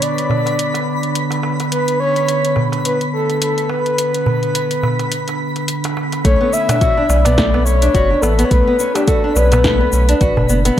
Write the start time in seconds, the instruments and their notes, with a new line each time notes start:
Already playing: ambient pad D3 B3 D4 B4, synth texture B5
0.02 soft synth lead D5, closed hi-hat
0.18 closed hi-hat
0.30 darbuka tek, darbuka dum
0.46 closed hi-hat, darbuka ka
0.59 closed hi-hat
0.74 closed hi-hat, darbuka tek
1.03 closed hi-hat
1.15 closed hi-hat
1.31 closed hi-hat, darbuka tek
1.43 darbuka tek
1.60 closed hi-hat, darbuka ka
1.71 soft synth lead B4, closed hi-hat
1.88 closed hi-hat
2.00 soft synth lead C#5
2.16 closed hi-hat
2.28 closed hi-hat
2.45 closed hi-hat
2.56 darbuka tek, darbuka dum
2.72 closed hi-hat, darbuka ka
2.85 soft synth lead B4, closed hi-hat, darbuka tek
3.01 closed hi-hat
3.13 soft synth lead A4
3.29 closed hi-hat, darbuka tek
3.41 soft synth lead A4, closed hi-hat
3.58 closed hi-hat
3.69 soft synth lead B4, darbuka tek
3.86 closed hi-hat
3.98 closed hi-hat
4.14 closed hi-hat
4.26 darbuka dum
4.43 closed hi-hat
4.55 closed hi-hat
4.71 closed hi-hat
4.83 darbuka tek, darbuka dum
4.99 closed hi-hat, darbuka ka
5.12 closed hi-hat
5.28 closed hi-hat, darbuka tek
5.56 closed hi-hat, darbuka tek
5.68 closed hi-hat
5.84 closed hi-hat, darbuka tek
5.97 darbuka tek
6.12 closed hi-hat, darbuka ka
6.24 sub bass B1, nylon-string guitar A3, ambient pad A3 B3, soft synth lead C#5, synth texture B5, kick, closed hi-hat, shaker
6.41 nylon-string guitar B3
6.53 nylon-string guitar C#4, soft synth lead E5, shaker
6.69 nylon-string guitar D4, closed hi-hat, darbuka tek, darbuka dum, shaker
6.81 nylon-string guitar F#4, kick, closed hi-hat, shaker
6.97 nylon-string guitar D4
7.09 sub bass B1, nylon-string guitar C#4, darbuka tek, shaker
7.25 nylon-string guitar B3, soft synth lead D5, closed hi-hat, darbuka ka, darbuka tek, darbuka dum, shaker
7.38 nylon-string guitar A3, kick, snare, closed hi-hat, shaker
7.54 nylon-string guitar B3, darbuka tek
7.65 nylon-string guitar C#4, soft synth lead C#5, shaker
7.82 nylon-string guitar D4, closed hi-hat, shaker
7.94 sub bass F#1, nylon-string guitar F#4, kick, closed hi-hat, shaker
8.10 nylon-string guitar D4
8.22 sub bass A1, nylon-string guitar B3, soft synth lead A4, darbuka tek, shaker
8.39 nylon-string guitar B3, closed hi-hat, shaker
8.45 soft synth lead C#5
8.50 sub bass B1, nylon-string guitar A3, soft synth lead B4, kick, closed hi-hat, shaker
8.67 nylon-string guitar B3
8.79 nylon-string guitar C#4, shaker
8.94 nylon-string guitar D4, soft synth lead G4, closed hi-hat, darbuka tek, shaker
9.08 nylon-string guitar F#4, soft synth lead A4, kick, closed hi-hat, shaker
9.24 nylon-string guitar D4
9.36 sub bass B1, nylon-string guitar C#4, soft synth lead B4, darbuka tek, shaker
9.52 nylon-string guitar B3, closed hi-hat, darbuka ka, darbuka tek, darbuka dum, shaker
9.64 nylon-string guitar A3, kick, snare, closed hi-hat, shaker
9.81 nylon-string guitar B3
9.92 sub bass B1, nylon-string guitar C#4, shaker
10.09 nylon-string guitar D4, closed hi-hat, shaker
10.21 sub bass A1, nylon-string guitar F#4, kick, closed hi-hat, shaker
10.37 sub bass F#1, nylon-string guitar D4, darbuka dum
10.49 sub bass F#1, nylon-string guitar B3, shaker
10.65 nylon-string guitar B3, closed hi-hat, darbuka ka, shaker